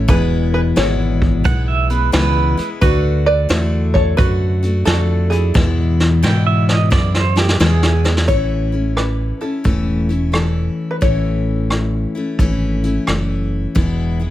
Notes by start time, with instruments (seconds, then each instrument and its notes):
0.08 fingered electric bass E1, steel-string acoustic guitar E2 B2 E3 G#3 B3 E4, five-string banjo G#4 B4, kick, closed hi-hat
0.54 five-string banjo G#4 B4
0.76 fingered electric bass G#1, steel-string acoustic guitar E2 B2 E3 G#3 B3 E4, five-string banjo G#4 C#5, snare, closed hi-hat
1.22 kick
1.44 fingered electric bass B1, steel-string acoustic guitar E3 G#3 B3 E4, pedal steel guitar F#5, kick, closed hi-hat
1.68 pedal steel guitar E5
1.90 steel-string acoustic guitar E3 G#3 B3 E4, pedal steel guitar B4, closed hi-hat
2.12 fingered electric bass C#2, steel-string acoustic guitar E2 B2 E3 G#3 B3 E4, pedal steel guitar B4, snare, closed hi-hat
2.57 steel-string acoustic guitar E3 G#3 B3 E4, closed hi-hat
2.81 fingered electric bass D2, steel-string acoustic guitar D3 A3 D4 F#4, five-string banjo F#4 B4, kick, closed hi-hat
3.26 five-string banjo B4 D5
3.49 fingered electric bass E2, steel-string acoustic guitar D3 A3 D4 F#4, snare, closed hi-hat
3.94 five-string banjo A4 C#5, kick
4.17 fingered electric bass F#2, steel-string acoustic guitar D3 A3 D4 F#4, five-string banjo F#4 B4, kick, closed hi-hat
4.63 steel-string acoustic guitar A3 D4 F#4, closed hi-hat
4.85 fingered electric bass F2, steel-string acoustic guitar D3 A3 D4 F#4, five-string banjo F#4 A4, snare, closed hi-hat
5.30 steel-string acoustic guitar A3 D4 F#4, five-string banjo E4 G#4, closed hi-hat
5.54 steel-string acoustic guitar E2 B2 E3 G#3 B3 E4, fingered electric bass E2, kick, snare
6.00 snare
6.23 steel-string acoustic guitar E2 B2 E3 G#3 B3 E4, fingered electric bass G#2, pedal steel guitar G5, snare
6.47 pedal steel guitar E5
6.69 pedal steel guitar D#5, snare
6.90 fingered electric bass F#2, steel-string acoustic guitar E3 G#3 B3 E4, pedal steel guitar D5, kick, snare
7.14 pedal steel guitar C5, snare
7.36 steel-string acoustic guitar E3 G#3 B3 E4, pedal steel guitar G4, snare
7.48 snare
7.60 steel-string acoustic guitar E2 B2 E3 G#3 B3 E4, fingered electric bass E2, pedal steel guitar G#4, snare
7.83 snare
8.04 steel-string acoustic guitar E3 G#3 B3 E4, snare
8.17 snare
8.28 fingered electric bass A1, steel-string acoustic guitar A2 E3 A3 C#4 E4, five-string banjo C#5, kick, closed hi-hat
8.72 steel-string acoustic guitar A3 C#4 E4
8.97 five-string banjo B4, cross-stick, closed hi-hat
9.41 steel-string acoustic guitar A3 C#4 E4, five-string banjo A4
9.64 fingered electric bass E1, steel-string acoustic guitar A2 E3 A3 C#4 E4, kick, closed hi-hat
10.09 steel-string acoustic guitar A3 C#4 E4, closed hi-hat
10.32 steel-string acoustic guitar E3 A3 C#4 E4, five-string banjo A4, cross-stick, closed hi-hat
10.91 five-string banjo B4
11.01 fingered electric bass A1, steel-string acoustic guitar A2 E3 A3 C#4 E4, five-string banjo C#5, kick, closed hi-hat
11.70 cross-stick, closed hi-hat
12.15 steel-string acoustic guitar A3 C#4 E4
12.39 fingered electric bass G#1, steel-string acoustic guitar E3 A3 C#4 E4, kick, closed hi-hat
12.84 steel-string acoustic guitar A3 C#4 E4, closed hi-hat
13.07 fingered electric bass F#1, steel-string acoustic guitar E3 A3 C#4 E4, cross-stick, closed hi-hat
13.75 fingered electric bass E1, steel-string acoustic guitar E2 B2 E3 G#3 B3 E4, kick, closed hi-hat
14.19 steel-string acoustic guitar E3 G#3 B3 E4